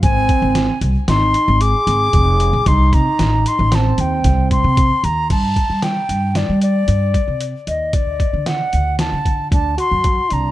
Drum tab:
CC |----------|----------|x---------|----------|
HH |xxxxxxxxxx|xxxxxxxxxx|xxxxxxxxxx|xxxxxxxxxx|
SD |--o-o-----|--o-o-o---|--o-o-----|--o-o-----|
BD |oo------o-|oo----ooo-|oo-----o--|oo---oo-o-|